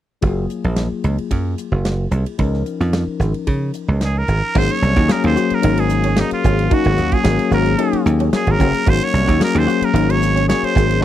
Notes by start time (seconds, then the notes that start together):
0.21 F#1 F#3 A#3 F4 G#4, kick, ride
0.50 hi-hat pedal, ride
0.64 A#1, ride
0.76 snare, ride
0.92 muted slap bass stroke
1.04 C#2, hi-hat pedal, ride
1.18 muted slap bass stroke, ride
1.31 F#2, kick, ride
1.58 hi-hat pedal, ride
1.72 F#1
1.85 snare, ride
2.11 C2, hi-hat pedal, ride
2.26 ride
2.38 C#2 F3 C#4 D#4 A#4, kick, ride
2.54 snare
2.66 hi-hat pedal, ride
2.80 F2, snare, ride
2.93 snare, ride
3.07 muted slap bass stroke
3.19 G#1, snare, hi-hat pedal, ride
3.34 muted slap bass stroke, ride
3.47 C#3, kick, ride
3.74 hi-hat pedal, ride
3.88 C#2
4.01 G#4, snare, ride
4.18 A#4
4.28 G#1, hi-hat pedal, ride
4.55 G#1 F#3 A#3 C#4 D#4 G#4 C5, kick, crash
4.69 C#5, ride
4.82 C2, hi-hat pedal
4.96 D#2 F#4, kick, ride
5.08 F#3 A#3 C#4 G#4 A#4, snare, ride
5.24 D#2 C5, ride
5.36 F#4, hi-hat pedal
5.50 muted slap bass stroke, ride
5.54 A#4
5.61 G#1 F#3 A#3 C#4 D#4, ride
5.77 G#4, ride
5.89 snare, hi-hat pedal
6.04 C#4, ride
6.16 F#3 A#3 C#4 D#4 G#4, snare, ride
6.31 F4, muted slap bass stroke, ride
6.44 G#1 C#4, kick, hi-hat pedal
6.59 ride
6.70 F#3 A#3 C#4 D#4 F#4, kick, ride
6.85 G#1, ride
6.97 D#2, hi-hat pedal
7.12 F#4 G#4, muted slap bass stroke, kick, ride
7.23 G#1 F#3 A#3 C#4 G#4, snare, ride
7.39 snare, ride
7.51 G#1 F#4 A#4, hi-hat pedal
7.66 ride
7.78 F#3 A#3 C#4 D#4 G#4, ride
7.93 muted slap bass stroke, ride
8.06 D#2, hi-hat pedal
8.20 C#4, ride
8.32 F#3 A#3 C#4 G#4, muted slap bass stroke, snare, ride
8.47 G#1, ride
8.51 A#4
8.59 F#1 C#4, kick, hi-hat pedal
8.74 ride
8.86 G#1 F#3 A#3 C#4 D#4 F#4 C5, kick, ride
9.01 C#5, ride
9.13 C2, hi-hat pedal
9.27 D#2 F#4, kick, ride
9.39 F#3 A#3 C#4 G#4, snare, ride
9.44 A#4
9.55 D#2 C5, ride
9.67 F#4, hi-hat pedal
9.82 A#4, muted slap bass stroke, ride
9.93 G#1 F#3 A#3 C#4 D#4, ride
10.10 C#5, ride
10.22 snare, hi-hat pedal
10.36 C#4, ride
10.48 F#3 A#3 C#4 G#4 C#5, snare, ride
10.63 C5, muted slap bass stroke, ride
10.75 G#1 C#4, kick, hi-hat pedal
10.91 ride
11.00 G#3 C#4 D#4